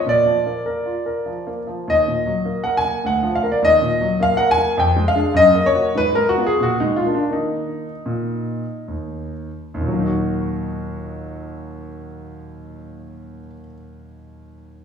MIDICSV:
0, 0, Header, 1, 2, 480
1, 0, Start_track
1, 0, Key_signature, -6, "minor"
1, 0, Tempo, 601202
1, 42, Time_signature, 3, 2, 24, 8
1, 1961, Tempo, 581959
1, 4841, Tempo, 645161
1, 5321, Tempo, 700935
1, 5801, Tempo, 786370
1, 6761, Tempo, 860832
1, 10095, End_track
2, 0, Start_track
2, 0, Title_t, "Grand piano"
2, 0, Program_c, 0, 0
2, 51, Note_on_c, 0, 46, 66
2, 72, Note_on_c, 0, 74, 93
2, 202, Note_on_c, 0, 53, 47
2, 203, Note_off_c, 0, 46, 0
2, 369, Note_on_c, 0, 58, 50
2, 371, Note_off_c, 0, 53, 0
2, 526, Note_on_c, 0, 70, 52
2, 534, Note_off_c, 0, 58, 0
2, 685, Note_on_c, 0, 65, 44
2, 692, Note_off_c, 0, 70, 0
2, 846, Note_on_c, 0, 70, 47
2, 851, Note_off_c, 0, 65, 0
2, 1004, Note_on_c, 0, 53, 45
2, 1013, Note_off_c, 0, 70, 0
2, 1172, Note_on_c, 0, 58, 49
2, 1173, Note_off_c, 0, 53, 0
2, 1260, Note_off_c, 0, 74, 0
2, 1334, Note_on_c, 0, 53, 42
2, 1339, Note_off_c, 0, 58, 0
2, 1492, Note_off_c, 0, 53, 0
2, 1497, Note_on_c, 0, 39, 61
2, 1516, Note_on_c, 0, 75, 94
2, 1648, Note_off_c, 0, 39, 0
2, 1658, Note_on_c, 0, 46, 45
2, 1806, Note_on_c, 0, 54, 49
2, 1818, Note_off_c, 0, 46, 0
2, 1959, Note_on_c, 0, 58, 50
2, 1969, Note_off_c, 0, 54, 0
2, 2094, Note_off_c, 0, 75, 0
2, 2109, Note_on_c, 0, 78, 83
2, 2127, Note_off_c, 0, 58, 0
2, 2127, Note_on_c, 0, 70, 47
2, 2214, Note_off_c, 0, 78, 0
2, 2223, Note_on_c, 0, 80, 99
2, 2280, Note_on_c, 0, 58, 53
2, 2291, Note_off_c, 0, 70, 0
2, 2416, Note_off_c, 0, 80, 0
2, 2439, Note_off_c, 0, 58, 0
2, 2445, Note_on_c, 0, 38, 64
2, 2463, Note_on_c, 0, 78, 84
2, 2597, Note_off_c, 0, 38, 0
2, 2598, Note_on_c, 0, 53, 58
2, 2656, Note_off_c, 0, 78, 0
2, 2702, Note_on_c, 0, 77, 87
2, 2766, Note_off_c, 0, 53, 0
2, 2767, Note_on_c, 0, 58, 49
2, 2767, Note_on_c, 0, 70, 50
2, 2810, Note_off_c, 0, 77, 0
2, 2836, Note_on_c, 0, 74, 80
2, 2878, Note_off_c, 0, 70, 0
2, 2879, Note_off_c, 0, 58, 0
2, 2924, Note_on_c, 0, 39, 68
2, 2936, Note_off_c, 0, 74, 0
2, 2943, Note_on_c, 0, 75, 106
2, 3075, Note_off_c, 0, 39, 0
2, 3083, Note_on_c, 0, 46, 56
2, 3244, Note_on_c, 0, 54, 58
2, 3246, Note_off_c, 0, 46, 0
2, 3400, Note_on_c, 0, 58, 67
2, 3406, Note_off_c, 0, 54, 0
2, 3407, Note_off_c, 0, 75, 0
2, 3421, Note_on_c, 0, 77, 116
2, 3527, Note_off_c, 0, 77, 0
2, 3540, Note_on_c, 0, 78, 102
2, 3556, Note_on_c, 0, 70, 60
2, 3564, Note_off_c, 0, 58, 0
2, 3646, Note_off_c, 0, 78, 0
2, 3656, Note_on_c, 0, 80, 115
2, 3710, Note_on_c, 0, 58, 67
2, 3722, Note_off_c, 0, 70, 0
2, 3870, Note_off_c, 0, 58, 0
2, 3872, Note_on_c, 0, 41, 72
2, 3882, Note_off_c, 0, 80, 0
2, 3890, Note_on_c, 0, 79, 88
2, 4025, Note_off_c, 0, 41, 0
2, 4028, Note_on_c, 0, 56, 64
2, 4117, Note_off_c, 0, 79, 0
2, 4125, Note_on_c, 0, 77, 107
2, 4185, Note_on_c, 0, 62, 53
2, 4187, Note_on_c, 0, 68, 60
2, 4194, Note_off_c, 0, 56, 0
2, 4300, Note_off_c, 0, 62, 0
2, 4302, Note_off_c, 0, 68, 0
2, 4321, Note_off_c, 0, 77, 0
2, 4341, Note_on_c, 0, 42, 76
2, 4361, Note_on_c, 0, 75, 118
2, 4501, Note_off_c, 0, 42, 0
2, 4512, Note_on_c, 0, 58, 62
2, 4598, Note_off_c, 0, 75, 0
2, 4605, Note_on_c, 0, 73, 104
2, 4665, Note_off_c, 0, 58, 0
2, 4677, Note_on_c, 0, 58, 54
2, 4680, Note_on_c, 0, 66, 64
2, 4797, Note_off_c, 0, 58, 0
2, 4799, Note_off_c, 0, 66, 0
2, 4842, Note_on_c, 0, 44, 77
2, 4848, Note_off_c, 0, 73, 0
2, 4861, Note_on_c, 0, 71, 114
2, 4968, Note_off_c, 0, 71, 0
2, 4993, Note_off_c, 0, 44, 0
2, 4993, Note_on_c, 0, 70, 92
2, 5007, Note_on_c, 0, 56, 51
2, 5094, Note_off_c, 0, 70, 0
2, 5096, Note_on_c, 0, 66, 99
2, 5159, Note_on_c, 0, 59, 55
2, 5167, Note_on_c, 0, 65, 60
2, 5170, Note_off_c, 0, 56, 0
2, 5207, Note_off_c, 0, 66, 0
2, 5226, Note_on_c, 0, 68, 86
2, 5276, Note_off_c, 0, 59, 0
2, 5281, Note_off_c, 0, 65, 0
2, 5329, Note_on_c, 0, 46, 66
2, 5334, Note_off_c, 0, 68, 0
2, 5345, Note_on_c, 0, 66, 91
2, 5449, Note_off_c, 0, 66, 0
2, 5464, Note_on_c, 0, 63, 87
2, 5474, Note_on_c, 0, 56, 57
2, 5475, Note_off_c, 0, 46, 0
2, 5569, Note_off_c, 0, 63, 0
2, 5575, Note_on_c, 0, 65, 83
2, 5640, Note_on_c, 0, 58, 47
2, 5643, Note_off_c, 0, 56, 0
2, 5645, Note_on_c, 0, 62, 49
2, 5686, Note_off_c, 0, 65, 0
2, 5689, Note_off_c, 0, 62, 0
2, 5700, Note_on_c, 0, 62, 66
2, 5758, Note_off_c, 0, 58, 0
2, 5806, Note_on_c, 0, 58, 43
2, 5807, Note_on_c, 0, 51, 53
2, 5812, Note_off_c, 0, 62, 0
2, 5821, Note_on_c, 0, 63, 73
2, 6131, Note_off_c, 0, 51, 0
2, 6177, Note_off_c, 0, 58, 0
2, 6267, Note_on_c, 0, 46, 58
2, 6613, Note_off_c, 0, 46, 0
2, 6768, Note_on_c, 0, 39, 46
2, 7009, Note_off_c, 0, 63, 0
2, 7103, Note_off_c, 0, 39, 0
2, 7249, Note_on_c, 0, 39, 63
2, 7286, Note_on_c, 0, 46, 52
2, 7321, Note_on_c, 0, 54, 55
2, 7357, Note_on_c, 0, 58, 53
2, 7393, Note_on_c, 0, 63, 56
2, 7412, Control_c, 0, 64, 127
2, 7428, Note_on_c, 0, 66, 55
2, 9291, Note_off_c, 0, 39, 0
2, 9327, Note_off_c, 0, 46, 0
2, 9362, Note_off_c, 0, 54, 0
2, 9398, Note_off_c, 0, 58, 0
2, 9434, Note_off_c, 0, 63, 0
2, 9469, Note_off_c, 0, 66, 0
2, 10095, End_track
0, 0, End_of_file